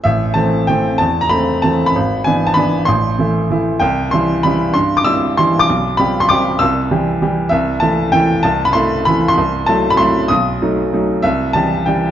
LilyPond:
<<
  \new Staff \with { instrumentName = "Upright piano" } { \time 3/4 \key a \minor \tempo 4 = 193 e''4 a''4 g''4 | a''8. bes''16 b''4 a''8. b''16~ | b''4 gis''8. a''16 b''4 | c'''2~ c'''8 r8 |
g''4 c'''4 b''4 | c'''8. d'''16 e'''4 c'''8. d'''16~ | d'''4 b''8. c'''16 d'''4 | e'''2~ e'''8 r8 |
\key a \dorian e''4 a''4 g''4 | a''8. b''16 c'''4 b''8. c'''16~ | c'''4 a''8. b''16 c'''4 | dis'''2~ dis'''8 r8 |
e''4 a''4 g''4 | }
  \new Staff \with { instrumentName = "Upright piano" } { \clef bass \time 3/4 \key a \minor a,,4 <e a c'>4 <e a c'>4 | e,4 <a c'>4 <e a c'>4 | gis,,4 <e b d'>4 <e b d'>4 | a,,4 <e a e'>4 <e a e'>4 |
c,4 <e g e'>4 <e g e'>4 | g,4 <g e'>4 <e g e'>4 | b,,4 <f g g'>4 <f g g'>4 | c,4 <e g g'>4 <e g g'>4 |
\key a \dorian c,4 <e a e'>4 <e a e'>4 | c,4 <a e'>4 <e a e'>4 | c,4 <fis a e'>4 <fis a e'>4 | b,,4 <fis a dis'>4 <fis a dis'>4 |
c,4 <e g g'>4 <e g g'>4 | }
>>